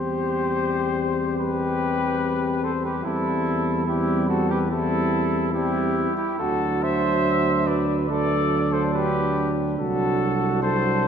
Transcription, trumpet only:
Already playing: C5
1.39 B4
2.65 C5
2.85 B4
3.06 A4
3.89 G4
4.30 A4
4.52 B4
4.72 A4
5.54 G4
6.17 G4
6.39 A4
6.83 E5
7.67 D5
8.09 D5
8.73 C5
8.93 B4
9.79 A4
10.63 C5

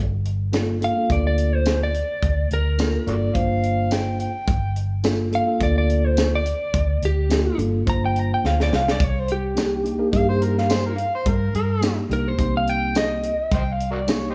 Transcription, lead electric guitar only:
0.84 F5
1.12 D5
1.27 D5
1.55 C5
1.83 D5
2.53 A#4
5.35 F5
5.63 D5
5.78 D5
6.07 C5
6.35 D5
7.05 G4
7.89 A#5
8.05 G5
8.19 A#5
8.34 G5
8.46 F5
8.63 D5
8.75 F5
8.91 D5
9.04 C#5
9.19 C5
9.32 G4
12.13 A#4
12.28 C5
12.57 F5
12.70 G5
12.97 D#5

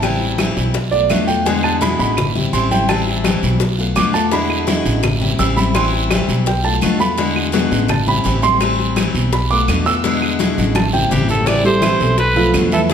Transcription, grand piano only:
0.03 G5
0.91 D5
1.10 E5
1.27 G5
1.46 G#5
1.64 A5
1.81 B5
1.99 B5
2.53 C6
2.71 G5
2.89 A5
3.96 D6
4.14 A5
4.32 B5
5.39 E6
5.57 B5
5.75 C6
6.47 G5
6.65 A5
7.00 B5
7.90 A5
8.08 B5
8.43 C6
9.33 B5
9.51 D6
9.86 E6
10.76 A5
10.93 G5
11.64 G3 G4 A4
11.82 E3 E4 E5
12.01 A4
12.36 F3 F4 A4
12.72 E3 E4 E5
12.90 E3

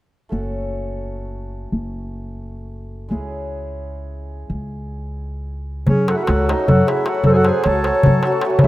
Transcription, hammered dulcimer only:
0.29 A3 C#4 F#4 A4
3.09 G#3 C#4 E4 G#4
6.09 F#3 A3 C#4 F#4
6.49 F#3 A3 C#4 F#4
6.87 F#3 A3 C#4 F#4
7.05 F#3 A3 C#4 F#4
7.46 F#3 A3 C#4 F#4
7.87 F#3 A3 C#4 F#4
8.25 F#3 A3 C#4 F#4
8.44 F#3 A3 C#4 F#4

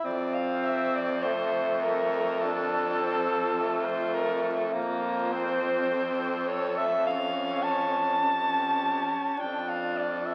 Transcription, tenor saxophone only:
0.04 C4
1.24 A3
2.43 D4
3.00 C4
3.59 A3
4.73 A#3
5.32 C4
7.04 C#4
8.21 C#4
9.37 D4

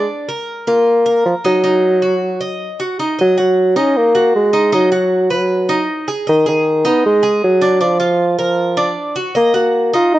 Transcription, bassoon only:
0.68 A#3
1.26 F3
1.45 F#3
3.21 F#3
3.39 F#3
3.77 C#4
3.97 A#3
4.36 G#3
4.74 F#3
5.31 F#3
6.29 D#3
6.48 D#3
6.86 B3
7.06 G#3
7.44 F#3
7.82 F3
8.39 F3
9.37 A#3
9.56 A#3
9.95 F4
10.14 D#4

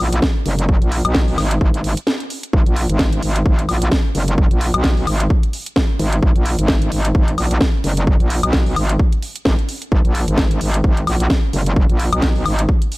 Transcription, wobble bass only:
0.00 A#1
0.46 F#1
0.82 A#1
1.05 B1
1.38 G#1
1.61 G#1
2.53 G#1
2.66 A#1
2.90 G#1
3.23 G#1
3.46 G#1
3.69 A#1
4.15 F#1
4.51 A#1
4.74 B1
5.07 G#1
5.99 G#1
6.23 G#1
6.36 A#1
6.59 G#1
6.92 G#1
7.15 G#1
7.38 A#1
7.84 F#1
8.20 A#1
8.43 B1
8.76 G#1
9.46 G#1
9.92 G#1
10.05 A#1
10.28 G#1
10.61 G#1
10.84 G#1
11.07 A#1
11.53 F#1
11.90 A#1
12.13 B1
12.46 G#1

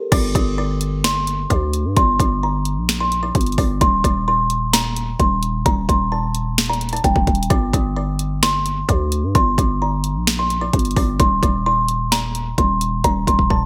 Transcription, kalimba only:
0.12 D6
0.35 D#6
0.58 D6
1.04 C6
1.50 D6
1.97 C6
2.19 D6
2.43 A#5
3.00 C6
3.23 D6
3.58 D6
3.81 C6
4.04 D6
4.28 C6
4.73 A#5
5.20 C6
5.66 A#5
5.89 C6
6.12 A5
6.69 A#5
6.93 A5
7.04 G5
7.50 D6
7.73 D#6
7.96 D6
8.43 C6
8.89 D6
9.35 C6
9.58 D6
9.82 A#5
10.39 C6
10.61 D6
10.97 D6
11.20 C6
11.43 D6
11.66 C6
12.12 A#5
12.58 C6
13.04 A#5
13.28 C6
13.51 A5

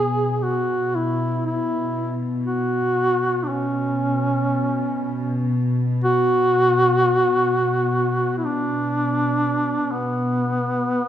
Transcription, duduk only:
Already playing: G#4
0.39 G#4
0.43 F#4
0.95 E4
1.46 E4
2.46 F#4
3.44 D4
3.49 C#4
6.04 F#4
8.38 E4
8.45 D4
9.92 B3

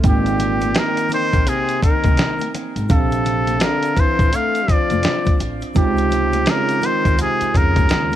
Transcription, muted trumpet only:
0.08 G4
0.79 A#4
1.14 C5
1.49 G#4
1.83 A#4
2.92 A4
3.63 A#4
4.00 C5
4.36 F5
4.72 D5
5.77 G4
6.50 A#4
6.86 C5
7.21 G#4
7.57 A#4

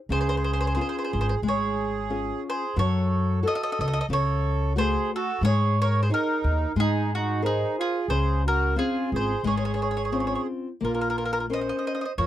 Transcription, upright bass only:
0.09 C#2
1.13 G#1
1.42 G#1
2.77 F#2
3.79 C#2
4.09 C#2
5.41 G#2
6.44 D#2
6.76 G#2
8.08 C#2
9.12 G#1
9.43 G#1
10.82 A#1
12.18 F2

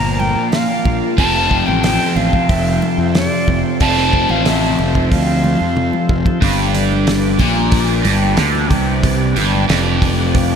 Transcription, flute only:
Already playing: A#5
0.19 G5
0.51 F5
1.18 A5
1.67 G5
2.16 F5
2.49 E5
3.16 D5
3.81 A5
4.31 F5
4.48 E5
5.13 F5

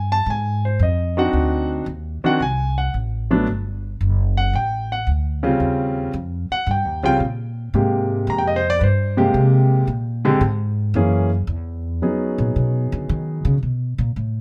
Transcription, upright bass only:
Already playing: G2
0.26 G#2
0.79 F2
1.33 D2
1.86 D#2
2.23 muted upright bass stroke
2.40 C2
2.94 A1
3.47 G1
4.01 F#1
4.53 A1
5.07 D2
5.60 D#2
6.13 F2
6.50 muted upright bass stroke
6.66 G2
6.85 D#2
7.03 C#2
7.20 A#2
7.74 G#2
8.27 F2
8.81 G2
9.34 C3
9.87 A#2
10.41 G#2
10.94 F#2
11.47 E2
12.38 A#2
12.56 B2
12.92 D3
13.09 D#3
13.45 C#3
13.63 B2
13.98 A#2
14.16 A2

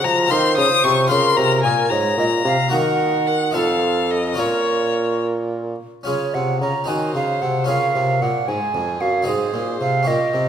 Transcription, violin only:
0.04 A#5
0.31 C6
0.57 D#6
0.84 C#6
1.09 C6
1.37 A#5
1.63 G#5
1.90 A#5
2.71 A#4
3.27 F#5
3.55 F5
4.11 D#5
4.39 C#5
6.88 C5
7.68 A#4
8.48 G#4
9.27 C5
10.07 G4

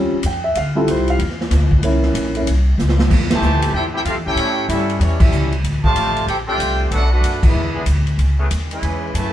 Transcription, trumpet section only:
3.34 G4 C5 E5 A5
3.76 E4 A4 C5 G5
3.96 E4 A4 C5 G5
4.07 C4 G4 A4 F5
4.26 E4 A4 C#5 G5
4.69 C#4 G4 A4 E5
5.00 A3 E4 G4 C#5
5.20 C#4 G4 A4 E5
5.85 F4 C5 D5 A5
6.28 E4 A4 C5 G5
6.48 F4 C5 D5 G5
6.92 D4 A4 B4 F#5
7.12 D4 A4 B4 F#5
7.46 D4 G#4 B4 E5
8.72 E4 B4 C#5 G#5
9.15 E4 B4 C#5 A5

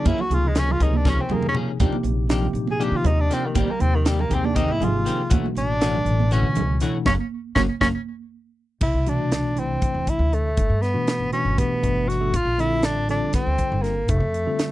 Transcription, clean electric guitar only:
0.05 F3 A#3 C#4 G#4
0.56 F3 A#3 C#4 G#4
0.80 A#3 C#4 G#4
1.05 F3 A#3 C#4 G#4
1.56 F3 A#3 C#4 G#4
1.80 F3 A#3 D4 G4
2.31 F3 A#3 D4 G4
2.80 F3 A#3 D4 G4
3.30 F3 A#3 D4 G4
3.55 D#3 A#3 C4 G4
4.05 D#3 A#3 C4 G4
4.31 A#3 C4 G4
4.55 D#3 A#3 C4 G4
5.05 D#3 A#3 C4 G4
5.30 E3 A3 C#4 F#4
5.80 E3 A3 C#4 F#4
6.31 E3 A3 C#4 F#4
6.81 E3 A3 C#4 F#4
7.07 F#3 A#3 C#4
7.57 F#3 A#3 C#4
7.81 F#3 A#3 C#4

